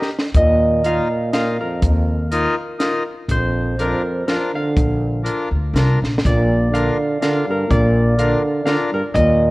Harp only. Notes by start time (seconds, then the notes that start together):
Already playing: D#5
0.36 D#5
0.86 F5
1.33 F5
1.61 A#4
3.31 C5
3.81 A#4
4.28 A#4
4.55 F5
6.26 D5
6.73 F5
7.22 F5
7.51 A#4
7.70 D5
8.19 F5
8.66 F5
8.94 A#4
9.14 D#5